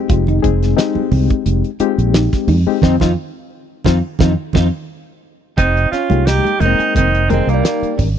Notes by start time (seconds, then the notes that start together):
Already playing: G#3 C4 D#4 G4
0.09 F1 F4, kick, closed hi-hat
0.27 D#4, closed hi-hat, low conga
0.42 F1 G#3 C4 D#4 G#4, kick, closed hi-hat
0.63 snare, closed hi-hat
0.77 G#3 C4 D#4 G4, snare, closed hi-hat
0.95 muted fretless electric bass stroke, high conga
1.11 C2 C4, open hi-hat, low conga
1.30 kick, closed hi-hat
1.45 F1, closed hi-hat, high conga
1.64 closed hi-hat
1.79 G#3 C4 D#4 F4 G4, muted fretless electric bass stroke, closed hi-hat
1.98 A#1, closed hi-hat
2.14 D#4, snare, closed hi-hat
2.33 muted fretless electric bass stroke, kick, snare, closed hi-hat
2.47 F2 D#4, open hi-hat, high conga, low conga
2.66 G#3 C4 D#4 G4, muted fretless electric bass stroke
2.82 F2 C4 D#4 F4, kick, snare, low conga
3.00 F2 C4 D#4 F4, kick, snare, low conga
3.85 F2 C4 D#4 F4, kick, snare, low conga
4.19 F2 C4 D#4 F4, kick, snare, low conga
4.53 F2 C4 D#4 F4, kick, snare, low conga
5.57 F1 C4 D#4 G4, kick, closed hi-hat
5.77 closed hi-hat
5.91 C#4 F4, muted fretless electric bass stroke, snare, closed hi-hat
6.10 C2 G#3 A#3 D#4 F4 G4, closed hi-hat, high conga
6.27 D#4 G4, snare, closed hi-hat
6.44 G4, closed hi-hat, high conga
6.60 F1 G#3 A#3 D#4 A#4, closed hi-hat, high conga, low conga
6.65 C4
6.79 G#4, muted fretless electric bass stroke, closed hi-hat
6.95 F1 C4 D#4, kick, closed hi-hat, low conga
7.15 closed hi-hat
7.29 G3 G#3 A#3 C4 D#4 G4 A#4, closed hi-hat, high conga, low conga
7.47 C2 A#3, closed hi-hat
7.54 G3
7.64 D#4, snare, closed hi-hat
7.82 muted fretless electric bass stroke, closed hi-hat
7.98 G#1 C#4, kick, open hi-hat, low conga